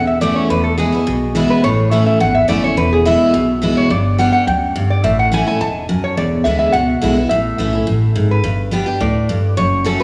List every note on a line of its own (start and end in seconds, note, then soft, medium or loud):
0.00 0.30 E1 medium
0.00 0.47 E2 medium
0.07 0.21 E5 medium
0.21 0.48 E3 medium
0.21 0.49 A3 medium
0.21 0.49 C#4 loud
0.21 0.49 E4 medium
0.21 0.35 D5 medium
0.36 0.50 C#5 medium
0.50 0.87 E1 medium
0.50 1.04 E2 medium
0.50 0.65 B4 medium
0.64 0.78 A4 medium
0.78 0.92 E3 medium
0.78 0.92 G#3 medium
0.78 0.93 B3 medium
0.78 0.91 E4 medium
0.78 1.52 G#4 medium
0.92 1.07 B3 medium
0.92 1.06 E4 medium
1.07 1.44 B1 medium
1.07 1.61 B2 medium
1.35 1.62 E3 medium
1.35 1.62 G#3 loud
1.35 1.63 B3 loud
1.35 1.63 E4 loud
1.50 1.63 B4 medium
1.64 2.01 A1 medium
1.64 2.18 A2 medium
1.64 1.91 C#5 medium
1.91 2.19 E3 medium
1.91 2.19 A3 medium
1.91 2.19 C#4 medium
1.91 2.19 E4 loud
1.91 2.05 E5 medium
2.06 2.19 E5 medium
2.20 2.44 G#1 medium
2.20 2.74 E2 medium
2.20 2.34 F#5 loud
2.35 2.48 E5 medium
2.48 2.73 F#1 medium
2.48 2.62 E3 medium
2.48 2.63 A3 loud
2.48 2.63 C#4 medium
2.48 2.61 E4 medium
2.48 2.63 D5 loud
2.62 2.77 C#4 soft
2.62 2.76 E4 medium
2.62 2.77 C#5 medium
2.77 3.14 E1 medium
2.77 3.31 E2 medium
2.77 2.92 B4 loud
2.93 3.05 G#4 medium
3.05 3.32 E3 medium
3.05 3.33 G#3 medium
3.05 3.33 B3 medium
3.05 3.33 E4 loud
3.05 3.79 E5 loud
3.34 3.71 B1 medium
3.34 3.88 B2 medium
3.62 3.89 E3 medium
3.62 3.89 G#3 medium
3.62 3.90 B3 loud
3.62 3.90 E4 loud
3.77 3.90 C#5 medium
3.90 4.27 G1 medium
3.90 4.44 G2 medium
3.90 4.17 D5 loud
4.18 4.46 G3 medium
4.18 4.46 B3 medium
4.18 4.46 D4 medium
4.18 4.47 G4 medium
4.18 4.31 F#5 medium
4.32 4.47 F#5 loud
4.47 4.84 D2 medium
4.47 4.74 F#2 medium
4.47 4.61 G5 medium
4.76 5.03 G2 medium
4.90 5.04 D5 medium
5.04 5.41 A1 medium
5.04 5.58 A2 medium
5.04 5.19 E5 medium
5.19 5.33 F#5 medium
5.32 5.46 E3 medium
5.32 5.46 A3 medium
5.32 5.47 C#4 medium
5.32 5.45 E4 loud
5.32 5.46 G#5 medium
5.47 5.61 C#4 medium
5.47 5.60 E4 medium
5.47 5.61 G#5 loud
5.61 5.98 E1 medium
5.61 5.88 G#2 medium
5.61 5.74 A5 loud
5.89 6.16 F#2 medium
6.04 6.17 C#5 medium
6.17 6.36 E1 loud
6.17 6.71 E2 medium
6.17 6.44 D5 medium
6.44 6.70 D2 medium
6.44 6.72 D3 medium
6.44 6.73 G#3 medium
6.44 6.73 B3 medium
6.44 6.73 E4 medium
6.44 6.58 E5 medium
6.59 6.74 E5 loud
6.72 6.98 C#2 medium
6.72 7.28 B2 medium
6.72 7.29 F#5 loud
7.02 7.26 B1 medium
7.02 7.16 D3 medium
7.02 7.16 G#3 medium
7.02 7.17 B3 medium
7.02 7.15 E4 loud
7.16 7.31 B3 soft
7.16 7.30 E4 medium
7.29 7.49 A1 medium
7.29 7.85 A2 medium
7.29 8.11 E5 loud
7.58 7.83 B1 medium
7.58 7.73 E3 medium
7.58 7.73 A3 medium
7.58 7.73 C#4 medium
7.58 7.72 E4 medium
7.73 7.87 C#4 soft
7.73 7.86 E4 medium
7.87 8.11 A1 medium
7.87 8.14 A2 medium
8.16 8.40 G#1 medium
8.16 8.43 G#2 medium
8.31 9.03 B4 medium
8.44 8.81 G1 loud
8.44 8.98 G2 medium
8.71 8.86 G3 medium
8.71 8.86 B3 medium
8.71 8.87 D4 medium
8.71 8.85 G4 medium
8.86 9.00 D4 medium
8.86 9.00 G4 medium
9.01 9.38 D2 medium
9.01 9.28 A2 medium
9.01 9.53 D5 medium
9.29 9.56 G2 medium
9.57 9.94 F#1 medium
9.57 10.03 F#2 medium
9.57 9.84 C#5 medium
9.84 9.99 F#3 medium
9.84 10.00 A3 medium
9.84 10.00 C#4 medium
9.84 9.98 F#4 medium
9.84 9.99 A4 medium
10.00 10.03 F#4 medium